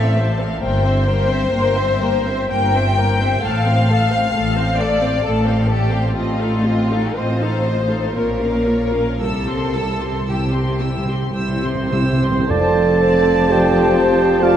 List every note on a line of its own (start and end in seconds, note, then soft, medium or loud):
0.00 0.51 A1 medium
0.00 0.51 A2 medium
0.00 0.18 C4 soft
0.00 0.18 A4 soft
0.00 0.18 E5 medium
0.00 0.17 F5 soft
0.18 0.40 A3 soft
0.18 0.40 C5 soft
0.18 0.40 A5 medium
0.39 0.61 C4 soft
0.39 0.61 A4 soft
0.39 0.62 F5 soft
0.60 1.41 G1 medium
0.60 1.40 G2 medium
0.60 0.82 A#3 medium
0.60 0.81 A#4 medium
0.60 2.46 C5 medium
0.60 0.82 G5 medium
0.84 1.06 C4 soft
0.84 1.06 C5 soft
0.84 1.06 E5 soft
1.06 1.29 A#3 soft
1.06 1.29 A#4 soft
1.06 1.29 G5 medium
1.28 1.51 C4 soft
1.28 1.51 C5 soft
1.28 1.53 E5 soft
1.51 2.38 G1 medium
1.51 2.38 G2 medium
1.51 1.74 A#3 medium
1.51 1.74 A#4 soft
1.51 1.75 G5 medium
1.75 2.00 C4 medium
1.75 2.00 C5 soft
1.75 2.01 E5 soft
2.01 2.26 A#3 soft
2.01 2.26 A#4 soft
2.01 2.26 G5 soft
2.26 2.50 C4 soft
2.26 2.50 C5 soft
2.26 2.51 E5 soft
2.50 3.32 G1 medium
2.50 3.31 G2 medium
2.50 2.72 A#3 soft
2.50 2.72 A#4 soft
2.50 3.43 G5 medium
2.50 2.73 G5 medium
2.74 2.97 C4 soft
2.74 2.97 C5 soft
2.74 2.97 E5 soft
2.96 3.19 A#3 medium
2.96 3.20 A#4 medium
2.96 3.20 G5 soft
3.19 3.42 C4 soft
3.19 3.42 C5 soft
3.19 3.43 E5 soft
3.42 4.24 A1 medium
3.42 4.24 A2 medium
3.42 3.63 A3 soft
3.42 3.64 A4 soft
3.42 4.81 F5 medium
3.42 3.64 A5 medium
3.65 3.89 C4 soft
3.65 3.89 C5 soft
3.65 3.88 F5 soft
3.88 4.12 A3 soft
3.88 4.12 A4 soft
3.88 4.11 A5 soft
4.10 4.35 C4 soft
4.10 4.35 C5 soft
4.10 4.34 F5 soft
4.34 5.15 A1 medium
4.34 5.14 A2 medium
4.34 4.55 A3 soft
4.34 4.56 A4 soft
4.34 4.56 A5 soft
4.57 4.80 C4 soft
4.57 4.80 C5 medium
4.57 4.80 F5 soft
4.79 5.03 A3 soft
4.79 5.03 A4 soft
4.79 5.25 D5 medium
4.79 5.02 A5 soft
5.01 5.25 C4 soft
5.01 5.24 C5 soft
5.01 5.24 F5 soft
5.24 6.04 A1 medium
5.24 6.04 A2 medium
5.24 5.46 A3 soft
5.24 5.45 A4 soft
5.24 5.70 A4 medium
5.24 5.45 A5 soft
5.46 5.69 C4 soft
5.46 5.69 C5 soft
5.46 5.69 F5 soft
5.68 5.91 A3 soft
5.68 6.14 G4 medium
5.68 5.92 A4 soft
5.68 5.92 A5 soft
5.91 6.14 C4 soft
5.91 6.15 C5 soft
5.91 6.15 F5 soft
6.15 7.05 A1 medium
6.15 7.04 A2 medium
6.15 6.38 C4 soft
6.15 6.38 F4 soft
6.15 7.15 F4 medium
6.15 6.38 D#5 medium
6.39 6.65 D#4 soft
6.39 6.65 A4 soft
6.39 6.65 F5 soft
6.64 6.91 C4 soft
6.64 6.91 F4 soft
6.64 6.90 D#5 soft
6.90 7.16 D#4 soft
6.90 7.16 A4 soft
6.90 7.15 F5 soft
7.15 8.02 A1 medium
7.15 8.01 A2 soft
7.15 7.39 C4 soft
7.15 7.39 F4 soft
7.15 8.14 C5 medium
7.15 7.38 D#5 soft
7.40 7.65 D#4 soft
7.40 7.65 A4 soft
7.40 7.64 F5 soft
7.63 7.89 C4 soft
7.63 7.89 F4 soft
7.63 7.88 D#5 soft
7.87 8.14 D#4 soft
7.87 8.14 A4 soft
7.87 8.13 F5 soft
8.13 9.08 A#1 medium
8.13 9.07 A#2 medium
8.13 8.38 A#3 soft
8.13 8.38 F4 soft
8.13 9.21 A#4 medium
8.13 8.37 C#5 soft
8.40 8.67 C#4 soft
8.40 8.66 A#4 soft
8.40 8.66 F5 soft
8.66 8.93 A#3 soft
8.66 8.93 F4 soft
8.66 8.93 C#5 soft
8.92 9.20 C#4 soft
8.92 9.20 A#4 soft
8.92 9.20 F5 soft
9.20 10.15 C2 soft
9.20 9.28 C3 soft
9.20 10.15 C3 soft
9.20 9.46 G3 soft
9.20 9.46 E4 soft
9.20 10.28 A4 medium
9.20 9.46 E6 soft
9.37 9.45 C3 soft
9.46 9.54 C3 soft
9.46 9.75 C4 soft
9.46 9.75 G4 soft
9.46 9.75 C6 soft
9.64 9.71 C3 soft
9.74 9.81 C3 soft
9.74 10.02 G3 soft
9.74 10.01 E4 soft
9.74 10.01 E6 soft
9.82 9.88 C3 soft
9.89 9.96 C3 soft
9.97 10.04 C3 soft
9.97 10.27 C6 soft
10.01 10.11 C3 soft
10.01 10.28 C4 soft
10.01 10.28 G4 soft
10.12 10.20 C3 soft
10.21 10.28 C3 soft
10.26 11.22 C2 soft
10.26 11.22 C3 soft
10.26 10.36 C3 soft
10.26 10.52 G3 soft
10.26 10.52 E4 soft
10.26 11.36 G4 medium
10.26 10.52 E6 soft
10.37 10.46 C3 soft
10.47 10.54 C3 soft
10.52 10.62 C3 soft
10.52 10.80 C4 soft
10.52 10.80 G4 soft
10.52 10.80 C6 soft
10.64 10.70 C3 soft
10.72 10.78 C3 soft
10.79 10.87 C3 soft
10.79 11.08 G3 soft
10.79 11.07 E4 soft
10.79 11.07 E6 soft
10.88 10.96 C3 soft
10.97 11.04 C3 medium
11.05 11.13 C3 soft
11.05 11.35 C4 soft
11.05 11.34 G4 soft
11.05 11.35 C6 soft
11.14 11.21 C3 soft
11.22 11.29 C3 soft
11.30 11.38 C3 soft
11.30 12.45 C4 medium
11.34 12.37 C2 medium
11.34 12.37 C3 medium
11.34 11.61 G3 soft
11.34 11.61 E4 soft
11.34 12.52 C5 medium
11.34 11.61 E6 soft
11.39 11.47 C3 medium
11.49 11.55 C3 medium
11.56 11.64 C3 medium
11.62 11.74 C3 medium
11.62 11.92 C4 soft
11.62 11.92 G4 soft
11.62 11.93 C6 soft
11.75 11.82 C3 medium
11.84 11.91 C3 medium
11.91 12.02 C3 medium
11.91 12.22 G3 soft
11.91 12.22 E4 soft
11.91 12.22 E6 soft
12.03 12.12 C3 medium
12.13 12.21 C3 medium
12.21 12.30 C3 medium
12.21 12.48 C4 soft
12.21 12.49 G4 soft
12.21 12.50 C6 soft
12.31 12.38 C3 medium
12.39 12.48 C3 medium
12.49 14.57 F1 medium
12.49 14.57 F2 medium
12.49 13.93 F2 medium
12.49 14.57 F3 medium
12.49 14.39 C4 medium
12.49 13.50 A4 medium
12.49 12.98 C5 medium
12.49 13.03 D5 medium
12.49 14.57 A5 medium
12.49 14.39 A5 medium
12.49 13.53 A5 medium
13.02 13.51 C5 medium
13.02 13.51 D5 medium
13.49 14.42 G4 medium
13.49 14.43 C5 medium
13.49 13.97 D5 medium
13.49 14.45 G5 medium
13.98 14.45 C5 medium
14.41 14.57 A3 medium
14.41 14.57 F4 medium
14.41 14.57 D5 medium
14.41 14.57 F5 medium
14.41 14.57 A5 medium